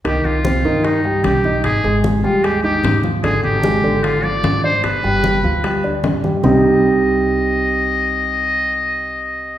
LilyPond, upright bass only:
\new Staff \with { instrumentName = "Upright bass" } { \clef bass \time 4/4 \key c \minor \tempo 4 = 150 c,8 c,4 g,4. b,,4 | aes,,8 aes,,4 ees,4. aes,4 | aes,,8 aes,,4 aes,,4. aes,4 | g,,8 g,,4 d,4. g,4 |
c,1~ | c,1 | }